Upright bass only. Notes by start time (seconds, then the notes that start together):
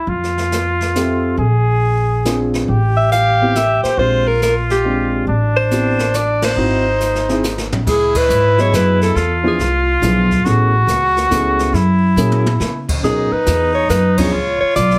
0.07 F2
1.37 A#1
2.68 A1
3.83 muted upright bass stroke
3.97 A#1
5.27 A1
6.56 G#1
7.86 C#2
8.29 G#2
8.72 F#2
9.16 E2
9.59 C2
10.02 B1
10.45 A1
10.87 C#2
11.31 C#2
11.73 F#2
12.16 A#2
12.60 C#3
13.03 B2
13.31 muted upright bass stroke
13.46 E2
13.89 F#2
14.32 C#2
14.61 muted upright bass stroke
14.76 B1